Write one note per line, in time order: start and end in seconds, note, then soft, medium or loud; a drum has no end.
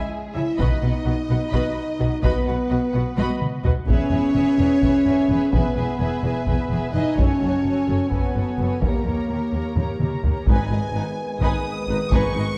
0.00 0.32 G#3 medium
0.00 0.35 G#4 medium
0.00 0.10 E5 soft
0.00 0.11 G#5 medium
0.34 0.44 C#2 soft
0.34 0.43 C#3 soft
0.34 0.58 E4 medium
0.34 0.43 E4 soft
0.34 0.44 G#4 soft
0.34 0.44 C#5 soft
0.34 0.42 E5 soft
0.34 0.59 E5 medium
0.58 0.67 B1 medium
0.58 0.67 B2 medium
0.58 2.23 D#4 medium
0.58 0.81 F#4 soft
0.58 0.81 B4 medium
0.58 2.20 D#5 medium
0.58 0.80 D#5 medium
0.58 0.80 B5 soft
0.58 taiko medium
0.82 0.90 B1 soft
0.82 0.91 B2 soft
0.82 0.91 F#4 soft
0.82 0.91 B4 soft
0.82 0.92 B4 soft
0.82 0.92 F#5 soft
1.04 1.13 B1 soft
1.04 1.14 B2 soft
1.04 1.13 F#4 soft
1.04 1.14 F#4 soft
1.04 1.14 B4 soft
1.04 1.12 D#5 soft
1.29 1.37 B1 soft
1.29 1.38 B2 soft
1.29 1.38 F#4 soft
1.29 1.37 B4 soft
1.29 1.38 B4 soft
1.29 1.38 F#5 soft
1.50 1.60 B1 medium
1.50 1.61 B2 medium
1.50 1.75 F#4 medium
1.50 1.75 B4 medium
1.50 1.73 D#5 medium
1.50 1.74 B5 soft
1.50 taiko medium
1.99 2.08 B1 soft
1.99 2.08 B2 soft
1.99 2.07 F#4 soft
1.99 2.07 B4 soft
1.99 2.08 D#5 soft
2.23 2.31 B1 medium
2.23 2.31 B2 medium
2.23 3.62 B3 medium
2.23 2.45 F#4 soft
2.23 2.45 B4 medium
2.23 3.63 B4 medium
2.23 2.45 D#5 medium
2.23 2.45 B5 medium
2.23 taiko medium
2.46 2.55 B1 soft
2.46 2.55 B2 soft
2.46 2.55 F#4 soft
2.46 2.54 B4 soft
2.46 2.55 B4 soft
2.46 2.55 F#5 soft
2.69 2.79 B1 soft
2.69 2.78 B2 soft
2.69 2.78 F#4 medium
2.69 2.79 F#4 soft
2.69 2.79 B4 soft
2.69 2.77 D#5 soft
2.92 3.02 B1 soft
2.92 3.02 B2 soft
2.92 3.03 F#4 soft
2.92 3.00 B4 soft
2.92 3.03 B4 soft
2.92 3.00 F#5 soft
3.17 3.26 B1 medium
3.17 3.25 B2 medium
3.17 3.40 F#4 medium
3.17 3.40 B4 medium
3.17 3.40 D#5 medium
3.17 3.39 B5 medium
3.17 taiko high medium
3.42 taiko mid medium
3.64 3.72 B1 medium
3.64 3.72 B2 soft
3.64 3.72 F#4 soft
3.64 3.72 F#4 medium
3.64 3.73 B4 medium
3.64 3.72 D#5 soft
3.64 taiko low medium
3.86 3.95 E1 medium
3.86 3.97 E2 medium
3.86 5.48 C#4 medium
3.86 4.11 G#4 medium
3.86 4.11 B4 medium
3.86 5.49 C#5 medium
3.86 4.10 E5 medium
3.86 4.09 G#5 medium
3.86 taiko medium
4.10 4.19 E1 medium
4.10 4.19 E2 medium
4.10 4.34 G#4 soft
4.10 4.34 B4 soft
4.10 4.31 E5 soft
4.10 4.32 G#5 soft
4.32 4.43 E1 medium
4.32 4.43 E2 medium
4.32 4.58 G#4 soft
4.32 4.58 B4 medium
4.32 4.56 E5 medium
4.32 4.57 G#5 medium
4.58 4.67 E1 medium
4.58 4.67 E2 medium
4.58 4.83 G#4 soft
4.58 4.82 B4 medium
4.58 4.81 E5 medium
4.58 4.80 G#5 soft
4.81 4.91 E1 medium
4.81 4.90 E2 medium
4.81 5.06 G#4 soft
4.81 5.05 B4 soft
4.81 5.04 E5 medium
4.81 5.05 G#5 medium
4.81 taiko medium
5.06 5.15 E1 medium
5.06 5.14 E2 medium
5.06 5.28 G#4 soft
5.06 5.28 B4 soft
5.06 5.28 E5 soft
5.06 5.29 G#5 soft
5.29 5.37 E1 medium
5.29 5.38 E2 soft
5.29 5.52 G#4 soft
5.29 5.52 B4 soft
5.29 5.51 E5 soft
5.29 5.52 G#5 soft
5.52 5.61 E1 medium
5.52 5.62 E2 medium
5.52 6.93 B3 medium
5.52 5.74 G#4 soft
5.52 6.91 B4 medium
5.52 5.74 B4 medium
5.52 5.76 E5 medium
5.52 5.75 G#5 medium
5.52 taiko medium
5.75 5.84 E1 medium
5.75 5.86 E2 medium
5.75 5.99 G#4 medium
5.75 5.99 B4 soft
5.75 5.98 E5 soft
5.75 5.98 G#5 soft
5.99 6.07 E1 medium
5.99 6.08 E2 medium
5.99 6.22 G#4 medium
5.99 6.22 B4 medium
5.99 6.23 E5 medium
5.99 6.22 G#5 soft
6.23 6.31 E1 medium
6.23 6.31 E2 medium
6.23 6.46 G#4 soft
6.23 6.45 B4 soft
6.23 6.47 E5 medium
6.23 6.47 G#5 soft
6.46 6.55 E1 medium
6.46 6.56 E2 medium
6.46 6.68 G#4 soft
6.46 6.68 B4 soft
6.46 6.70 E5 medium
6.46 6.69 G#5 soft
6.46 taiko medium
6.70 6.78 E1 medium
6.70 6.79 E2 medium
6.70 6.91 G#4 soft
6.70 6.91 B4 soft
6.70 6.94 E5 soft
6.70 6.94 G#5 soft
6.92 7.01 E1 medium
6.92 7.02 E2 soft
6.92 7.16 D#4 medium
6.92 7.16 G#4 soft
6.92 7.16 B4 medium
6.92 7.18 D#5 medium
6.92 7.18 E5 soft
6.92 7.18 G#5 soft
7.16 7.25 F#1 medium
7.16 7.26 F#2 medium
7.16 8.11 C#4 medium
7.16 7.39 F#4 soft
7.16 7.39 A4 soft
7.16 8.11 C#5 medium
7.16 7.42 G#5 soft
7.16 taiko medium
7.20 7.42 C#5 medium
7.40 7.50 F#1 medium
7.40 7.49 F#2 soft
7.40 7.62 F#4 soft
7.40 7.62 A4 soft
7.44 7.66 C#5 soft
7.44 7.66 G#5 soft
7.63 7.73 F#1 soft
7.63 7.72 F#2 soft
7.63 7.85 F#4 soft
7.63 7.85 A4 soft
7.68 7.88 C#5 soft
7.68 7.89 G#5 soft
7.87 7.96 F#1 soft
7.87 7.96 F#2 soft
7.87 8.10 F#4 soft
7.87 8.10 A4 soft
7.87 8.12 C#5 soft
7.87 8.12 G#5 soft
8.09 8.19 F#1 soft
8.09 8.18 F#2 soft
8.09 8.81 B3 medium
8.09 8.32 F#4 soft
8.09 8.32 A4 soft
8.09 8.80 B4 soft
8.09 taiko medium
8.15 8.36 C#5 soft
8.15 8.36 G#5 soft
8.33 8.42 F#1 soft
8.33 8.42 F#2 soft
8.33 8.57 F#4 soft
8.33 8.57 A4 soft
8.37 8.59 C#5 soft
8.37 8.60 G#5 soft
8.58 8.66 F#1 soft
8.58 8.67 F#2 soft
8.58 8.82 F#4 soft
8.58 8.81 A4 soft
8.58 8.83 C#5 soft
8.58 8.83 G#5 soft
8.80 8.89 D#2 soft
8.80 8.90 D#2 soft
8.80 10.22 A#3 soft
8.80 9.05 G4 soft
8.80 9.05 A#4 soft
8.80 10.24 A#4 soft
8.80 9.06 C#5 soft
8.80 taiko medium
8.85 9.06 A#5 soft
9.05 9.13 D#2 soft
9.05 9.29 G4 soft
9.05 9.29 A#4 soft
9.05 9.30 C#5 soft
9.09 9.30 A#5 soft
9.29 9.37 D#2 soft
9.29 9.52 G4 soft
9.29 9.52 A#4 soft
9.29 9.53 C#5 soft
9.29 9.53 A#5 soft
9.52 9.60 D#2 soft
9.52 9.61 D#2 soft
9.52 9.75 G4 soft
9.52 9.75 A#4 soft
9.52 9.77 C#5 soft
9.52 9.77 A#5 soft
9.76 9.84 D#2 soft
9.76 9.99 G4 soft
9.76 9.99 A#4 soft
9.76 10.00 C#5 soft
9.76 10.01 A#5 soft
9.76 taiko low-mid medium
10.00 10.08 D#2 soft
10.00 10.23 G4 soft
10.00 10.22 A#4 soft
10.00 10.24 C#5 soft
10.00 10.24 A#5 soft
10.00 taiko mid medium
10.23 10.31 D#2 soft
10.23 10.32 D#2 soft
10.23 10.47 G4 soft
10.23 10.46 A#4 soft
10.23 taiko low medium
10.27 10.48 C#5 soft
10.27 10.49 A#5 soft
10.46 10.55 G#1 medium
10.46 10.57 G#1 medium
10.46 11.13 G#2 medium
10.46 10.56 G#2 medium
10.46 12.58 D#3 medium
10.46 12.58 G#3 soft
10.46 12.58 B3 soft
10.46 10.69 D#4 medium
10.46 12.58 B4 soft
10.46 10.69 B4 medium
10.46 11.38 G#5 medium
10.46 10.70 G#5 medium
10.46 taiko medium
10.51 10.71 B4 medium
10.70 10.79 G#1 soft
10.70 10.78 G#1 soft
10.70 10.79 G#2 soft
10.70 10.79 D#4 soft
10.70 10.81 G#4 soft
10.70 10.79 B4 soft
10.70 10.81 D#5 soft
10.93 11.01 G#1 soft
10.93 11.04 G#1 soft
10.93 11.03 G#2 soft
10.93 11.03 D#4 soft
10.93 11.04 D#4 soft
10.93 11.03 B4 soft
11.41 11.49 G#1 medium
11.41 11.50 G#1 medium
11.41 11.49 G#2 medium
11.41 11.63 D#4 soft
11.41 11.63 B4 medium
11.41 11.64 B4 medium
11.41 11.64 G#5 medium
11.41 12.10 D#6 medium
11.41 taiko medium
11.88 11.96 G#1 soft
11.88 11.97 G#1 soft
11.88 11.97 G#2 soft
11.88 11.97 D#4 soft
11.88 12.00 D#4 soft
11.88 11.97 B4 soft
11.92 12.00 B4 soft
12.10 12.18 G#1 medium
12.10 12.21 G#1 medium
12.10 12.20 G#2 medium
12.10 12.34 D#4 medium
12.10 12.33 B4 medium
12.10 12.34 B4 medium
12.10 12.33 G#5 medium
12.10 12.58 C#6 medium
12.10 taiko medium
12.34 12.42 G#1 soft
12.34 12.44 G#1 soft
12.34 12.43 G#2 soft
12.34 12.43 D#4 soft
12.34 12.45 G#4 soft
12.34 12.43 B4 soft
12.34 12.46 D#5 soft